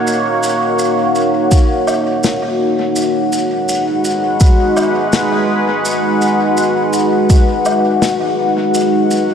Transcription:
0, 0, Header, 1, 3, 480
1, 0, Start_track
1, 0, Tempo, 722892
1, 46, Time_signature, 4, 2, 24, 8
1, 6202, End_track
2, 0, Start_track
2, 0, Title_t, "Ambient pad"
2, 0, Program_c, 0, 92
2, 0, Note_on_c, 0, 58, 86
2, 0, Note_on_c, 0, 63, 73
2, 0, Note_on_c, 0, 66, 87
2, 0, Note_on_c, 0, 73, 70
2, 0, Note_on_c, 0, 78, 81
2, 1967, Note_off_c, 0, 58, 0
2, 1967, Note_on_c, 0, 56, 82
2, 2170, Note_on_c, 0, 71, 68
2, 2836, Note_off_c, 0, 73, 0
2, 5807, Note_off_c, 0, 56, 0
2, 5807, Note_off_c, 0, 71, 0
2, 5809, Note_on_c, 0, 58, 73
2, 6202, Note_off_c, 0, 58, 0
2, 6202, Note_off_c, 0, 63, 0
2, 6202, Note_off_c, 0, 66, 0
2, 6202, Note_off_c, 0, 78, 0
2, 6202, End_track
3, 0, Start_track
3, 0, Title_t, "Drums"
3, 48, Note_on_c, 9, 82, 67
3, 114, Note_off_c, 9, 82, 0
3, 287, Note_on_c, 9, 82, 50
3, 353, Note_off_c, 9, 82, 0
3, 523, Note_on_c, 9, 82, 63
3, 590, Note_off_c, 9, 82, 0
3, 766, Note_on_c, 9, 82, 42
3, 833, Note_off_c, 9, 82, 0
3, 1005, Note_on_c, 9, 82, 72
3, 1007, Note_on_c, 9, 36, 103
3, 1072, Note_off_c, 9, 82, 0
3, 1074, Note_off_c, 9, 36, 0
3, 1245, Note_on_c, 9, 77, 58
3, 1247, Note_on_c, 9, 82, 52
3, 1311, Note_off_c, 9, 77, 0
3, 1313, Note_off_c, 9, 82, 0
3, 1484, Note_on_c, 9, 82, 64
3, 1490, Note_on_c, 9, 38, 92
3, 1550, Note_off_c, 9, 82, 0
3, 1556, Note_off_c, 9, 38, 0
3, 1965, Note_on_c, 9, 82, 65
3, 2031, Note_off_c, 9, 82, 0
3, 2208, Note_on_c, 9, 82, 50
3, 2274, Note_off_c, 9, 82, 0
3, 2448, Note_on_c, 9, 82, 62
3, 2515, Note_off_c, 9, 82, 0
3, 2686, Note_on_c, 9, 82, 48
3, 2753, Note_off_c, 9, 82, 0
3, 2923, Note_on_c, 9, 82, 72
3, 2926, Note_on_c, 9, 36, 105
3, 2989, Note_off_c, 9, 82, 0
3, 2993, Note_off_c, 9, 36, 0
3, 3165, Note_on_c, 9, 77, 60
3, 3167, Note_on_c, 9, 82, 44
3, 3232, Note_off_c, 9, 77, 0
3, 3233, Note_off_c, 9, 82, 0
3, 3404, Note_on_c, 9, 82, 64
3, 3407, Note_on_c, 9, 38, 103
3, 3471, Note_off_c, 9, 82, 0
3, 3473, Note_off_c, 9, 38, 0
3, 3886, Note_on_c, 9, 82, 70
3, 3952, Note_off_c, 9, 82, 0
3, 4128, Note_on_c, 9, 82, 46
3, 4194, Note_off_c, 9, 82, 0
3, 4364, Note_on_c, 9, 82, 65
3, 4430, Note_off_c, 9, 82, 0
3, 4602, Note_on_c, 9, 82, 50
3, 4669, Note_off_c, 9, 82, 0
3, 4845, Note_on_c, 9, 82, 65
3, 4846, Note_on_c, 9, 36, 106
3, 4912, Note_off_c, 9, 36, 0
3, 4912, Note_off_c, 9, 82, 0
3, 5082, Note_on_c, 9, 82, 41
3, 5086, Note_on_c, 9, 77, 56
3, 5149, Note_off_c, 9, 82, 0
3, 5153, Note_off_c, 9, 77, 0
3, 5326, Note_on_c, 9, 38, 94
3, 5327, Note_on_c, 9, 82, 65
3, 5392, Note_off_c, 9, 38, 0
3, 5394, Note_off_c, 9, 82, 0
3, 5806, Note_on_c, 9, 82, 63
3, 5872, Note_off_c, 9, 82, 0
3, 6048, Note_on_c, 9, 82, 44
3, 6114, Note_off_c, 9, 82, 0
3, 6202, End_track
0, 0, End_of_file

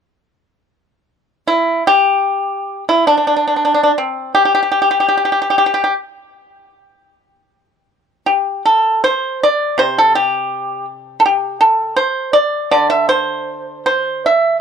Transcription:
0, 0, Header, 1, 2, 480
1, 0, Start_track
1, 0, Tempo, 500000
1, 14024, End_track
2, 0, Start_track
2, 0, Title_t, "Pipa"
2, 0, Program_c, 0, 105
2, 1416, Note_on_c, 0, 64, 50
2, 1752, Note_off_c, 0, 64, 0
2, 1797, Note_on_c, 0, 67, 60
2, 2722, Note_off_c, 0, 67, 0
2, 2773, Note_on_c, 0, 64, 51
2, 2944, Note_off_c, 0, 64, 0
2, 2948, Note_on_c, 0, 62, 59
2, 3029, Note_off_c, 0, 62, 0
2, 3048, Note_on_c, 0, 62, 37
2, 3124, Note_off_c, 0, 62, 0
2, 3140, Note_on_c, 0, 62, 42
2, 3215, Note_off_c, 0, 62, 0
2, 3230, Note_on_c, 0, 62, 33
2, 3305, Note_off_c, 0, 62, 0
2, 3336, Note_on_c, 0, 62, 40
2, 3403, Note_off_c, 0, 62, 0
2, 3420, Note_on_c, 0, 62, 36
2, 3490, Note_off_c, 0, 62, 0
2, 3502, Note_on_c, 0, 62, 42
2, 3575, Note_off_c, 0, 62, 0
2, 3595, Note_on_c, 0, 62, 35
2, 3666, Note_off_c, 0, 62, 0
2, 3681, Note_on_c, 0, 62, 44
2, 3754, Note_off_c, 0, 62, 0
2, 3820, Note_on_c, 0, 60, 46
2, 4145, Note_off_c, 0, 60, 0
2, 4172, Note_on_c, 0, 67, 59
2, 4252, Note_off_c, 0, 67, 0
2, 4275, Note_on_c, 0, 67, 42
2, 4347, Note_off_c, 0, 67, 0
2, 4365, Note_on_c, 0, 67, 48
2, 4430, Note_off_c, 0, 67, 0
2, 4527, Note_on_c, 0, 67, 43
2, 4602, Note_off_c, 0, 67, 0
2, 4625, Note_on_c, 0, 67, 37
2, 4694, Note_off_c, 0, 67, 0
2, 4711, Note_on_c, 0, 67, 43
2, 4780, Note_off_c, 0, 67, 0
2, 4801, Note_on_c, 0, 67, 38
2, 4867, Note_off_c, 0, 67, 0
2, 4882, Note_on_c, 0, 67, 36
2, 4949, Note_off_c, 0, 67, 0
2, 4967, Note_on_c, 0, 67, 32
2, 5029, Note_off_c, 0, 67, 0
2, 5040, Note_on_c, 0, 67, 39
2, 5096, Note_off_c, 0, 67, 0
2, 5108, Note_on_c, 0, 67, 35
2, 5187, Note_off_c, 0, 67, 0
2, 5200, Note_on_c, 0, 67, 44
2, 5270, Note_off_c, 0, 67, 0
2, 5282, Note_on_c, 0, 67, 40
2, 5346, Note_off_c, 0, 67, 0
2, 5357, Note_on_c, 0, 67, 45
2, 5424, Note_off_c, 0, 67, 0
2, 5435, Note_on_c, 0, 67, 41
2, 5499, Note_off_c, 0, 67, 0
2, 5510, Note_on_c, 0, 67, 46
2, 5593, Note_off_c, 0, 67, 0
2, 5604, Note_on_c, 0, 67, 43
2, 5689, Note_off_c, 0, 67, 0
2, 7933, Note_on_c, 0, 67, 46
2, 8275, Note_off_c, 0, 67, 0
2, 8309, Note_on_c, 0, 69, 49
2, 8649, Note_off_c, 0, 69, 0
2, 8677, Note_on_c, 0, 72, 64
2, 9014, Note_off_c, 0, 72, 0
2, 9057, Note_on_c, 0, 74, 65
2, 9382, Note_off_c, 0, 74, 0
2, 9386, Note_on_c, 0, 48, 46
2, 9397, Note_on_c, 0, 72, 65
2, 9562, Note_off_c, 0, 72, 0
2, 9585, Note_on_c, 0, 69, 61
2, 9744, Note_off_c, 0, 69, 0
2, 9748, Note_on_c, 0, 67, 55
2, 10414, Note_off_c, 0, 67, 0
2, 10751, Note_on_c, 0, 69, 53
2, 10802, Note_off_c, 0, 69, 0
2, 10806, Note_on_c, 0, 67, 57
2, 11131, Note_off_c, 0, 67, 0
2, 11142, Note_on_c, 0, 69, 60
2, 11476, Note_off_c, 0, 69, 0
2, 11486, Note_on_c, 0, 72, 66
2, 11502, Note_off_c, 0, 48, 0
2, 11826, Note_off_c, 0, 72, 0
2, 11839, Note_on_c, 0, 74, 66
2, 12181, Note_off_c, 0, 74, 0
2, 12206, Note_on_c, 0, 50, 50
2, 12206, Note_on_c, 0, 74, 69
2, 12377, Note_off_c, 0, 74, 0
2, 12382, Note_on_c, 0, 76, 64
2, 12557, Note_off_c, 0, 76, 0
2, 12565, Note_on_c, 0, 72, 65
2, 13274, Note_off_c, 0, 72, 0
2, 13305, Note_on_c, 0, 72, 57
2, 13664, Note_off_c, 0, 72, 0
2, 13689, Note_on_c, 0, 76, 55
2, 13982, Note_off_c, 0, 76, 0
2, 14024, Note_off_c, 0, 50, 0
2, 14024, End_track
0, 0, End_of_file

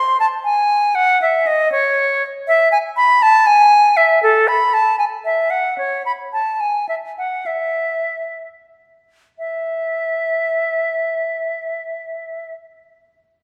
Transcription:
0, 0, Header, 1, 2, 480
1, 0, Start_track
1, 0, Key_signature, 4, "major"
1, 0, Tempo, 505476
1, 1151, Time_signature, 6, 3, 24, 8
1, 4495, Tempo, 537153
1, 6415, Tempo, 584226
1, 6895, Tempo, 624350
1, 7855, Tempo, 652884
1, 11321, End_track
2, 0, Start_track
2, 0, Title_t, "Flute"
2, 0, Program_c, 0, 73
2, 0, Note_on_c, 0, 84, 88
2, 183, Note_off_c, 0, 84, 0
2, 189, Note_on_c, 0, 81, 91
2, 246, Note_off_c, 0, 81, 0
2, 418, Note_on_c, 0, 80, 84
2, 903, Note_on_c, 0, 78, 98
2, 917, Note_off_c, 0, 80, 0
2, 1148, Note_off_c, 0, 78, 0
2, 1157, Note_on_c, 0, 76, 86
2, 1392, Note_on_c, 0, 75, 95
2, 1406, Note_off_c, 0, 76, 0
2, 1626, Note_off_c, 0, 75, 0
2, 1632, Note_on_c, 0, 73, 106
2, 2123, Note_off_c, 0, 73, 0
2, 2351, Note_on_c, 0, 76, 98
2, 2575, Note_off_c, 0, 76, 0
2, 2581, Note_on_c, 0, 80, 97
2, 2638, Note_off_c, 0, 80, 0
2, 2817, Note_on_c, 0, 83, 99
2, 3061, Note_on_c, 0, 81, 110
2, 3076, Note_off_c, 0, 83, 0
2, 3291, Note_on_c, 0, 80, 106
2, 3305, Note_off_c, 0, 81, 0
2, 3768, Note_on_c, 0, 76, 93
2, 3782, Note_off_c, 0, 80, 0
2, 4009, Note_off_c, 0, 76, 0
2, 4014, Note_on_c, 0, 69, 93
2, 4253, Note_on_c, 0, 83, 87
2, 4268, Note_off_c, 0, 69, 0
2, 4497, Note_on_c, 0, 81, 83
2, 4511, Note_off_c, 0, 83, 0
2, 4717, Note_off_c, 0, 81, 0
2, 4723, Note_on_c, 0, 80, 75
2, 4776, Note_off_c, 0, 80, 0
2, 4955, Note_on_c, 0, 76, 77
2, 5183, Note_on_c, 0, 78, 74
2, 5196, Note_off_c, 0, 76, 0
2, 5426, Note_off_c, 0, 78, 0
2, 5432, Note_on_c, 0, 73, 76
2, 5669, Note_off_c, 0, 73, 0
2, 5679, Note_on_c, 0, 83, 69
2, 5733, Note_off_c, 0, 83, 0
2, 5921, Note_on_c, 0, 81, 65
2, 6165, Note_on_c, 0, 80, 67
2, 6178, Note_off_c, 0, 81, 0
2, 6415, Note_off_c, 0, 80, 0
2, 6419, Note_on_c, 0, 76, 49
2, 6472, Note_off_c, 0, 76, 0
2, 6660, Note_on_c, 0, 78, 58
2, 6891, Note_on_c, 0, 76, 51
2, 6902, Note_off_c, 0, 78, 0
2, 7605, Note_off_c, 0, 76, 0
2, 8348, Note_on_c, 0, 76, 56
2, 10663, Note_off_c, 0, 76, 0
2, 11321, End_track
0, 0, End_of_file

